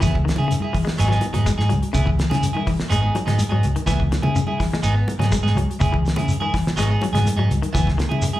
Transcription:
0.00 C#2 E3 B3 E4 G#4, kick, closed hi-hat, high conga, low conga, shekere
0.05 snare
0.15 kick
0.25 D#3, closed hi-hat, shekere
0.29 snare
0.36 C#3 E4 G#4, high conga
0.48 C#3, closed hi-hat, high conga, shekere
0.60 E4 G#4, high conga
0.73 E3, kick, open hi-hat, shekere
0.85 G#3, muted fingered electric bass stroke, snare
0.98 G#1 F#3 B3 D#4 G#4, closed hi-hat, high conga, shekere
1.08 F#3 B3 D#4 G#4, snare
1.21 closed hi-hat, high conga, shekere
1.33 G#2 F#3 B3 D#4 G#4, closed hi-hat, low conga
1.46 G#3, kick, snare, closed hi-hat, high conga, shekere
1.58 G#2 D#4 G#4, muted clean electric guitar stroke, snare, high conga
1.69 C#2 F#3, closed hi-hat, high conga, shekere
1.83 muted fingered electric bass stroke, closed hi-hat
1.93 C#2 C#3 B3 E4 G#4, kick, closed hi-hat, high conga, low conga, shekere
2.06 E3, kick
2.19 snare, closed hi-hat, shekere
2.30 C#3 E4 G#4, snare, closed hi-hat, high conga
2.43 closed hi-hat, high conga, shekere
2.53 D#3 E4 G#4, high conga
2.67 E3, kick, open hi-hat, shekere
2.80 muted fingered electric bass stroke, snare
2.89 G#1 G#3 B3 D#4 G#4, muted clean electric guitar stroke, closed hi-hat, high conga, shekere
3.01 B3 D#4 G#4
3.15 F#3, closed hi-hat, high conga, shekere
3.26 G#2 G#3 B3 D#4 G#4, snare, closed hi-hat, low conga
3.38 closed hi-hat, high conga, shekere
3.49 G#2 F#3 B3 D#4 G#4, high conga
3.63 C#2, closed hi-hat, shekere
3.76 D#3, muted fingered electric bass stroke, closed hi-hat
3.86 C#2 E3 B3 E4 G#4, kick, snare, closed hi-hat, high conga, low conga, shekere
4.00 kick
4.12 D#3, snare, closed hi-hat, shekere
4.22 C#3 E4 G#4, high conga, low conga
4.36 C#3, closed hi-hat, shekere
4.47 E4 G#4, high conga
4.60 E3, kick, snare, open hi-hat, shekere
4.71 G#3, muted fingered electric bass stroke, snare
4.83 G#1 B3 D#4 G#4, muted clean electric guitar stroke, closed hi-hat, high conga, shekere
4.95 B3, muted clean electric guitar stroke
5.08 closed hi-hat, high conga, shekere
5.19 G#2 F#3 B3 D#4 G#4, snare, closed hi-hat, low conga
5.31 G#3, kick, closed hi-hat, high conga, shekere
5.43 G#2 B3 D#4 G#4, snare
5.55 C#2 F#3, closed hi-hat, high conga, shekere
5.66 muted fingered electric bass stroke
5.71 closed hi-hat
5.80 C#2 E4 G#4, muted clean electric guitar stroke, kick, closed hi-hat, high conga, low conga, shekere
5.92 E3, kick
6.05 snare, closed hi-hat, shekere
6.16 C#3 E4 G#4, closed hi-hat, high conga, low conga
6.28 closed hi-hat, high conga, shekere
6.40 D#3 E4 G#4, high conga
6.54 E3, kick, snare, open hi-hat, shekere
6.66 muted fingered electric bass stroke, snare
6.76 G#1 F#3 G#3 B3 D#4 G#4, snare, closed hi-hat, high conga, shekere
6.90 B3 D#4 G#4
7.01 F#3, closed hi-hat, high conga, shekere
7.13 G#2 G#3 B3 D#4 G#4, snare, closed hi-hat, low conga
7.26 closed hi-hat, high conga, shekere
7.36 G#2 F#3 B3 D#4 G#4
7.50 C#2, closed hi-hat, high conga, shekere
7.62 D#3, muted fingered electric bass stroke, closed hi-hat
7.73 C#2 E3 B3 E4 G#4, kick, closed hi-hat, high conga, low conga, shekere
7.87 kick, snare
7.98 D#3, snare, closed hi-hat, shekere
8.09 C#3 E4 G#4, high conga
8.22 muted clean electric guitar stroke, closed hi-hat, high conga, shekere
8.33 E4 G#4, high conga

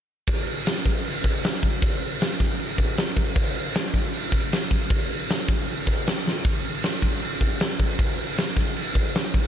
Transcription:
0.27 kick, crash
0.47 crash
0.66 snare, crash
0.86 kick, crash
1.05 crash
1.24 kick, crash
1.44 snare, crash
1.63 kick, crash
1.82 kick, crash
2.02 crash
2.21 snare, crash
2.40 kick, snare, crash
2.60 crash
2.78 kick, crash
2.97 snare, crash
3.17 kick, crash
3.36 kick, crash
3.55 crash
3.75 snare, crash
3.94 kick, snare, crash
4.13 crash
4.32 kick, crash
4.52 snare, crash
4.71 kick, crash
4.90 kick, crash
5.11 crash
5.30 snare, crash
5.48 kick, crash
5.68 crash
5.87 kick, crash
6.07 snare, crash
6.28 snare
6.45 kick, crash
6.64 crash
6.83 snare, crash
7.02 kick, crash
7.22 crash
7.41 kick, crash
7.60 snare, crash
7.80 kick, crash
7.99 kick, crash
8.19 crash
8.38 snare, crash
8.57 kick, snare, crash
8.77 crash
8.95 kick, crash
9.15 snare, crash
9.34 kick, crash

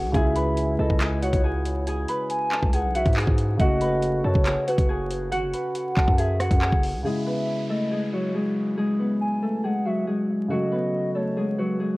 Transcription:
Already playing: A3 F#4 G#4 B4 F#5 G#5
0.04 C#2
0.12 C#2 C#3 G#3 G#4 E5 G#5, kick, closed hi-hat
0.16 E4
0.36 B4 B5, closed hi-hat
0.57 closed hi-hat
0.79 C#2 A4 D#5 A5
0.90 C#2, kick
1.01 G#4 G#5, clap, closed hi-hat
1.22 F#4 C#5 F#5, closed hi-hat
1.33 C#2, kick, closed hi-hat
1.44 G#4 G#5
1.65 closed hi-hat
1.87 G#4 G#5, closed hi-hat
2.08 B4 B5, closed hi-hat
2.30 G#5, closed hi-hat
2.52 A4 A5, clap
2.63 C#2, kick
2.73 G#4 F#5 G#5, closed hi-hat
2.84 B1
2.95 F#4 E5 F#5, closed hi-hat
3.06 G#2, kick, closed hi-hat
3.13 G#5, clap, closed hi-hat
3.17 G#4, closed hi-hat
3.27 G#2, kick
3.38 closed hi-hat
3.57 F#1 C#3 A3 F#4 D#5 F#5, kick, closed hi-hat
3.61 F#4
3.81 B4 B5, closed hi-hat
4.02 closed hi-hat
4.24 F#2 A4 C#5 A5
4.35 F#1, kick
4.46 G#4 G#5, clap, closed hi-hat
4.67 F#4 B4 F#5, closed hi-hat
4.78 F#1, kick, closed hi-hat
4.89 G#4 G#5
5.11 closed hi-hat
5.32 G#1 F#4 F#5, closed hi-hat
5.43 F#1
5.54 B4 B5, closed hi-hat
5.75 F#5, closed hi-hat
5.97 F#1 A4 A5, kick, clap
6.08 F#2, kick
6.18 G#4 E5 G#5, closed hi-hat
6.40 F#4 F#5, cross-stick, closed hi-hat
6.51 F#2, kick, closed hi-hat
6.61 G#4 G#5, clap
6.72 F#1, kick
6.83 open hi-hat
6.94 C#2
7.03 C#3 G#3 G#4 E5, downlifter
7.07 E4
7.27 B3 B4
7.69 A3 A4 D#5
7.91 G#3 G#4
8.13 F#3 F#4 C#5
8.35 G#3 G#4
8.77 G#3 G#4
8.99 B3 B4
9.21 G#5
9.42 A3 A4
9.64 G#3 G#4 F#5
9.85 F#3 F#4 E5
10.07 G#3 G#4
10.48 C#3 F#3 A3 F#4 D#5
10.52 F#4
10.72 B3 B4
11.15 A3 A4 C#5
11.37 G#3 G#4
11.58 F#3 F#4 B4
11.80 G#3 G#4

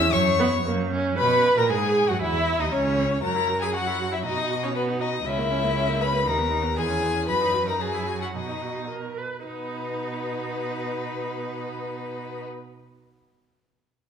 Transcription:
Already playing: E5 E6
0.12 F#2 C#5 C#6
0.39 B3
0.66 F#2 A#3
0.93 C#4
1.18 B2 B4 B5
1.57 A#2 A#4 A#5
1.70 G#2 G#4 G#5
2.09 F#2 F#4 F#5
2.21 E2 E4 E5
2.60 D#2 D#4 D#5
2.72 C#2 C#4 C#5
3.23 F#2 F#4 A#4 A#5
3.35 E4
3.49 F#4
3.61 E4 G#4 G#5
3.73 F#4 F#5
3.87 E4
3.99 F#4
4.12 E4 E5
4.24 B2 D#4 F#4 D#5
4.37 D#4
4.50 F#4
4.63 C#4 D#4 C#5
4.75 B3 F#4 B4
4.88 D#4
5.00 D#4 F#4 D#5
5.13 D#4
5.25 C#2 C#4 E4 E5
5.38 A#3
5.51 C#4
5.63 A#3
5.76 C#4
5.88 A#3
6.01 C#4 B4 B5
6.13 A#3
6.25 D#2 D#4 A#4 A#5
6.38 B3
6.50 D#4
6.63 B3
6.75 E2 B3 G#4 G#5
6.89 C#4
7.03 B3
7.15 C#4
7.28 F#2 F#4 B4 B5
7.41 D#4
7.54 F#4
7.67 D#4 A#4 A#5
7.80 F#4 G#4 G#5
7.94 E4
8.07 F#4
8.21 E4 F#4 F#5
8.35 B2 D#4 F#4 D#5
8.48 D#4
8.62 F#4
8.75 D#4
8.90 A#4
9.18 B4
9.46 B2 B3 D#4 B4

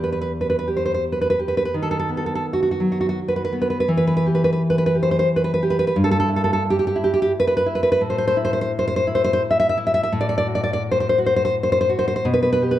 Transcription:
Already playing: E2 G4
0.04 B4
0.12 B4
0.21 B4
0.41 B4
0.50 B4
0.59 B4
0.68 G4
0.77 C5
0.85 C5
0.94 C5
1.12 B4
1.21 B4
1.30 B4
1.39 G4
1.48 B4
1.57 B4
1.65 B4
1.74 D#3
1.82 A4
1.91 A4
1.99 A4
2.09 B3
2.17 A4
2.26 A4
2.35 A4
2.53 F#4
2.63 F#4
2.71 F#4
2.80 F#3
2.92 F#4
3.01 F#4
3.09 F#4
3.28 B4
3.36 B4
3.45 B4
3.53 B3
3.62 B4
3.70 B4
3.80 B4
3.88 E3
3.97 B4
4.07 B4
4.17 B4
4.26 G4
4.35 B4
4.44 B4
4.53 B4
4.70 B4
4.78 B4
4.86 B4
4.95 G4
5.03 C5
5.11 C5
5.19 C5
5.36 B4
5.44 B4
5.54 B4
5.63 G4
5.70 B4
5.79 B4
5.87 B4
5.96 G2
6.04 A4
6.11 A4
6.20 A4
6.28 E4
6.36 A4
6.44 A4
6.53 A4
6.70 G4
6.79 G4
6.87 G4
6.96 E4
7.04 G4
7.14 G4
7.22 G4
7.40 B4
7.47 B4
7.57 B4
7.66 E4
7.75 B4
7.83 B4
7.92 B4
8.01 A2
8.10 C5
8.18 C5
8.27 C5
8.37 E4
8.45 C5
8.53 C5
8.61 C5
8.79 C5
8.88 C5
8.96 C5
9.07 E4
9.15 C5
9.24 C5
9.33 C5
9.51 E5
9.60 E5
9.69 E5
9.77 E4
9.87 E5
9.94 E5
10.03 E5
10.12 A2
10.21 D5
10.29 D5
10.38 D5
10.47 F#4
10.55 D5
10.63 D5
10.73 D5
10.91 C5
11.00 C5
11.09 C5
11.18 F#4
11.26 C5
11.36 C5
11.45 C5
11.63 C5
11.72 C5
11.81 C5
11.89 F#4
11.99 C5
12.08 C5
12.16 C5
12.25 B2
12.34 B4
12.42 B4
12.53 B4
12.62 G4
12.71 B4

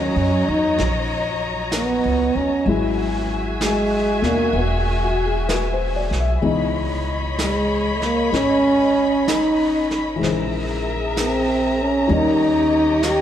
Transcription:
Already playing: D#2 F#3 C#4 D#4 A#4 C#5 D#5 A#5
0.16 F#2
0.48 E2 D#4
0.78 A#1, brush sweep, snare
1.72 brush sweep, snare, hi-hat pedal
1.76 B3
2.05 C#2
2.35 D#2 C#4
2.65 G#1 F#3 G#3 F#4 G#4 E5 G#5, brush sweep
2.69 E4
3.61 G#3, brush sweep, snare, hi-hat pedal
4.22 D#2 B2 A#3, snare
4.26 D4
4.53 E1 B3, brush sweep
5.04 F#4
5.25 G#4
5.49 B4, brush sweep, snare, hi-hat pedal
5.73 C5
5.96 D5
6.11 B1, snare
6.20 E5
6.41 C#2 B2 E3 G#3 D#4 C#5 D#5 B5, brush sweep
7.39 G#3, brush sweep, snare, hi-hat pedal
7.96 A3
8.02 A#3, snare
8.32 G#1 G#3 C#4, brush sweep, snare
9.28 D#4, brush sweep, snare, hi-hat pedal
9.91 snare
10.16 E3 G#3
10.21 A#1 G#4 A#4 C5 E5 A#5, brush sweep, snare
10.27 C#3
11.17 C4, brush sweep, snare, hi-hat pedal
11.82 C#4
12.08 D#2 D#3 G3 A#3 G4 C#5 D#5, brush sweep
12.12 C#4 D#4
13.03 brush sweep, snare, hi-hat pedal
13.09 G4

